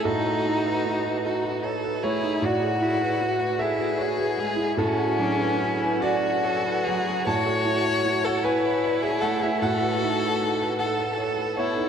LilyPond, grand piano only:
\new Staff \with { instrumentName = "Grand piano" } { \time 6/8 \key b \dorian \tempo 4. = 51 << { a'2 r8 cis''8 | d''4. e''4. | a'4. d''4. | a''4~ a''16 fis''16 gis''8. e''16 fis''16 e''16 |
fis''4. fis''8 r8 cis''8 | } \\ { a,16 a'16 dis'16 b'16 dis'16 b'16 a'16 b'16 cis''16 b'16 a16 dis'16 | a,16 gis'16 e'16 b'16 e'16 b'16 a'16 b'16 cis''16 b'16 gis16 e'16 | a,16 fis'16 fis16 b'16 fis'16 b'16 a'16 b'16 cis''16 b'16 fis16 fis'16 | a,16 a'16 e'16 cis''16 e'16 cis''16 b'16 cis''16 d''16 cis''16 a16 e'16 |
a,16 b'16 dis'16 b'16 dis'16 b'16 a'16 b'16 cis''16 b'16 b16 dis'16 | } >> }